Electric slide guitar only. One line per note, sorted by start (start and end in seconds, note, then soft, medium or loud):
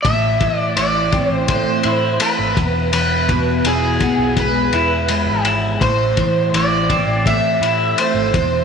0.03 0.59 E5 medium
0.59 0.76 D5 medium
0.76 1.31 D5 medium
1.31 1.49 C5 medium
1.50 2.17 C5 medium
2.22 2.92 B4 medium
2.93 3.67 B4 medium
3.67 4.34 G#4 medium
4.40 5.42 B4 medium
5.82 6.49 C5 medium
6.56 7.27 D5 medium
7.27 8.00 E5 medium
7.99 8.64 C5 medium